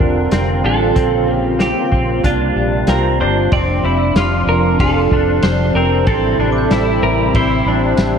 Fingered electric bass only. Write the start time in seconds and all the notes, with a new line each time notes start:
0.00 E1
0.32 F1
0.64 A1
0.96 A#1
1.92 A#1
2.23 C2
2.56 A#1
2.88 C2
3.20 G1
3.52 F1
3.83 F1
4.15 F1
4.47 F1
4.79 F1
5.11 F1
5.43 F1
5.75 F1
6.07 A1
6.38 A1
6.70 A1
7.02 A1
7.34 A1
7.66 A1
7.98 A1